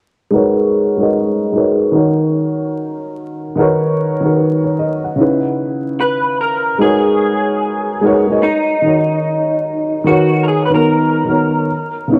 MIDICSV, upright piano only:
0, 0, Header, 1, 2, 480
1, 0, Start_track
1, 0, Key_signature, 5, "minor"
1, 0, Tempo, 810811
1, 189, Time_signature, 4, 2, 24, 8
1, 7219, End_track
2, 0, Start_track
2, 0, Title_t, "Upright piano"
2, 0, Program_c, 0, 0
2, 179, Note_on_c, 0, 56, 86
2, 185, Note_on_c, 0, 63, 78
2, 192, Note_on_c, 0, 66, 84
2, 197, Note_on_c, 0, 70, 89
2, 205, Note_on_c, 0, 71, 91
2, 211, Note_on_c, 0, 73, 106
2, 297, Control_c, 0, 64, 127
2, 533, Note_off_c, 0, 56, 0
2, 536, Note_off_c, 0, 63, 0
2, 540, Note_off_c, 0, 66, 0
2, 543, Note_off_c, 0, 70, 0
2, 546, Note_off_c, 0, 71, 0
2, 550, Note_off_c, 0, 73, 0
2, 574, Note_on_c, 0, 56, 76
2, 581, Note_on_c, 0, 63, 66
2, 587, Note_on_c, 0, 66, 68
2, 595, Note_on_c, 0, 70, 63
2, 602, Note_on_c, 0, 71, 65
2, 608, Note_on_c, 0, 75, 78
2, 880, Note_off_c, 0, 56, 0
2, 883, Note_off_c, 0, 63, 0
2, 886, Note_off_c, 0, 66, 0
2, 890, Note_off_c, 0, 70, 0
2, 894, Note_off_c, 0, 71, 0
2, 897, Note_off_c, 0, 75, 0
2, 901, Note_on_c, 0, 56, 64
2, 906, Note_on_c, 0, 63, 68
2, 912, Note_on_c, 0, 66, 59
2, 921, Note_on_c, 0, 70, 66
2, 926, Note_on_c, 0, 71, 64
2, 932, Note_on_c, 0, 73, 75
2, 1135, Note_off_c, 0, 63, 0
2, 1135, Note_on_c, 0, 51, 80
2, 1143, Note_off_c, 0, 66, 0
2, 1143, Note_on_c, 0, 63, 69
2, 1145, Note_off_c, 0, 56, 0
2, 1150, Note_off_c, 0, 70, 0
2, 1152, Note_on_c, 0, 66, 68
2, 1156, Control_c, 0, 64, 0
2, 1157, Note_off_c, 0, 71, 0
2, 1159, Note_off_c, 0, 73, 0
2, 1159, Note_on_c, 0, 70, 67
2, 1168, Note_on_c, 0, 73, 77
2, 1266, Control_c, 0, 64, 127
2, 2036, Note_off_c, 0, 51, 0
2, 2040, Note_off_c, 0, 63, 0
2, 2044, Note_off_c, 0, 66, 0
2, 2048, Note_off_c, 0, 70, 0
2, 2052, Note_off_c, 0, 73, 0
2, 2105, Note_on_c, 0, 51, 89
2, 2112, Note_on_c, 0, 63, 96
2, 2115, Control_c, 0, 64, 0
2, 2117, Note_on_c, 0, 66, 83
2, 2126, Note_on_c, 0, 70, 95
2, 2132, Note_on_c, 0, 71, 90
2, 2139, Note_on_c, 0, 73, 103
2, 2224, Control_c, 0, 64, 127
2, 2456, Note_off_c, 0, 51, 0
2, 2460, Note_off_c, 0, 63, 0
2, 2462, Note_off_c, 0, 66, 0
2, 2467, Note_off_c, 0, 70, 0
2, 2470, Note_off_c, 0, 71, 0
2, 2473, Note_off_c, 0, 73, 0
2, 2489, Note_on_c, 0, 51, 78
2, 2497, Note_on_c, 0, 63, 56
2, 2503, Note_on_c, 0, 66, 67
2, 2510, Note_on_c, 0, 70, 74
2, 2517, Note_on_c, 0, 71, 66
2, 2522, Note_on_c, 0, 73, 77
2, 2575, Note_off_c, 0, 71, 0
2, 2584, Note_on_c, 0, 71, 55
2, 2593, Note_off_c, 0, 70, 0
2, 2599, Note_off_c, 0, 73, 0
2, 2732, Note_off_c, 0, 71, 0
2, 2747, Note_on_c, 0, 73, 67
2, 2827, Note_off_c, 0, 73, 0
2, 2836, Note_on_c, 0, 75, 70
2, 2979, Note_off_c, 0, 75, 0
2, 2984, Note_on_c, 0, 78, 62
2, 3053, Note_on_c, 0, 49, 76
2, 3061, Note_off_c, 0, 63, 0
2, 3062, Note_off_c, 0, 51, 0
2, 3063, Note_on_c, 0, 61, 71
2, 3069, Note_off_c, 0, 66, 0
2, 3070, Note_on_c, 0, 63, 70
2, 3076, Control_c, 0, 64, 0
2, 3080, Note_on_c, 0, 64, 67
2, 3088, Note_on_c, 0, 71, 80
2, 3189, Control_c, 0, 64, 127
2, 3211, Note_off_c, 0, 78, 0
2, 3955, Note_off_c, 0, 49, 0
2, 3960, Note_off_c, 0, 61, 0
2, 3963, Note_off_c, 0, 63, 0
2, 3968, Note_off_c, 0, 64, 0
2, 3972, Note_off_c, 0, 71, 0
2, 4015, Note_on_c, 0, 56, 84
2, 4021, Note_on_c, 0, 63, 85
2, 4027, Note_on_c, 0, 66, 77
2, 4035, Note_on_c, 0, 70, 76
2, 4037, Control_c, 0, 64, 0
2, 4041, Note_on_c, 0, 71, 79
2, 4048, Note_on_c, 0, 73, 97
2, 4140, Control_c, 0, 64, 127
2, 4692, Note_off_c, 0, 56, 0
2, 4695, Note_off_c, 0, 63, 0
2, 4698, Note_off_c, 0, 66, 0
2, 4702, Note_off_c, 0, 70, 0
2, 4705, Note_off_c, 0, 71, 0
2, 4709, Note_off_c, 0, 73, 0
2, 4742, Note_on_c, 0, 56, 85
2, 4749, Note_on_c, 0, 63, 83
2, 4754, Note_on_c, 0, 66, 77
2, 4762, Note_on_c, 0, 70, 77
2, 4768, Note_on_c, 0, 71, 74
2, 4775, Note_on_c, 0, 73, 103
2, 4884, Note_off_c, 0, 56, 0
2, 4888, Note_off_c, 0, 63, 0
2, 4890, Note_off_c, 0, 66, 0
2, 4894, Note_off_c, 0, 70, 0
2, 4894, Note_on_c, 0, 56, 65
2, 4897, Note_off_c, 0, 71, 0
2, 4900, Note_on_c, 0, 63, 59
2, 4901, Note_off_c, 0, 73, 0
2, 4907, Note_on_c, 0, 66, 56
2, 4912, Note_on_c, 0, 70, 62
2, 4919, Note_on_c, 0, 71, 59
2, 4925, Note_on_c, 0, 75, 79
2, 4984, Note_off_c, 0, 56, 0
2, 4987, Note_off_c, 0, 63, 0
2, 4991, Note_off_c, 0, 66, 0
2, 4993, Note_off_c, 0, 70, 0
2, 4995, Control_c, 0, 64, 0
2, 4997, Note_off_c, 0, 71, 0
2, 5000, Note_off_c, 0, 75, 0
2, 5110, Control_c, 0, 64, 127
2, 5221, Note_on_c, 0, 51, 65
2, 5229, Note_on_c, 0, 63, 57
2, 5237, Note_on_c, 0, 66, 58
2, 5246, Note_on_c, 0, 70, 57
2, 5253, Note_on_c, 0, 73, 76
2, 5895, Note_off_c, 0, 51, 0
2, 5899, Note_off_c, 0, 63, 0
2, 5903, Note_off_c, 0, 66, 0
2, 5908, Note_off_c, 0, 70, 0
2, 5911, Note_off_c, 0, 73, 0
2, 5945, Note_on_c, 0, 51, 91
2, 5952, Note_on_c, 0, 63, 77
2, 5957, Control_c, 0, 64, 0
2, 5959, Note_on_c, 0, 66, 72
2, 5964, Note_on_c, 0, 70, 86
2, 5971, Note_on_c, 0, 71, 82
2, 5978, Note_on_c, 0, 73, 98
2, 6061, Control_c, 0, 64, 127
2, 6296, Note_off_c, 0, 51, 0
2, 6300, Note_off_c, 0, 63, 0
2, 6303, Note_off_c, 0, 66, 0
2, 6306, Note_off_c, 0, 70, 0
2, 6310, Note_off_c, 0, 71, 0
2, 6313, Note_off_c, 0, 73, 0
2, 6333, Note_on_c, 0, 51, 62
2, 6339, Note_on_c, 0, 63, 60
2, 6345, Note_on_c, 0, 66, 61
2, 6354, Note_on_c, 0, 70, 59
2, 6357, Note_on_c, 0, 59, 65
2, 6364, Note_on_c, 0, 73, 68
2, 6639, Note_off_c, 0, 51, 0
2, 6642, Note_off_c, 0, 63, 0
2, 6645, Note_off_c, 0, 66, 0
2, 6650, Note_off_c, 0, 70, 0
2, 6651, Note_off_c, 0, 59, 0
2, 6655, Note_off_c, 0, 73, 0
2, 6658, Note_on_c, 0, 51, 69
2, 6663, Note_on_c, 0, 63, 63
2, 6672, Note_on_c, 0, 66, 60
2, 6678, Note_on_c, 0, 70, 60
2, 6685, Note_on_c, 0, 59, 62
2, 6691, Note_on_c, 0, 73, 69
2, 6903, Note_off_c, 0, 51, 0
2, 6906, Note_off_c, 0, 63, 0
2, 6910, Note_off_c, 0, 66, 0
2, 6913, Note_off_c, 0, 70, 0
2, 6917, Note_off_c, 0, 59, 0
2, 6917, Control_c, 0, 64, 0
2, 6920, Note_off_c, 0, 73, 0
2, 7037, Control_c, 0, 64, 127
2, 7148, Note_on_c, 0, 49, 76
2, 7157, Note_on_c, 0, 59, 66
2, 7165, Note_on_c, 0, 63, 68
2, 7175, Note_on_c, 0, 64, 80
2, 7181, Note_on_c, 0, 73, 84
2, 7219, Note_off_c, 0, 49, 0
2, 7219, Note_off_c, 0, 59, 0
2, 7219, Note_off_c, 0, 63, 0
2, 7219, Note_off_c, 0, 64, 0
2, 7219, Note_off_c, 0, 73, 0
2, 7219, End_track
0, 0, End_of_file